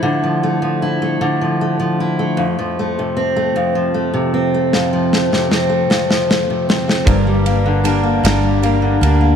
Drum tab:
RD |------------|------------|------------|x-x-x-x-x-x-|
SD |------------|------------|o-ooo-ooo-oo|------o-----|
BD |------------|------------|------------|o-----------|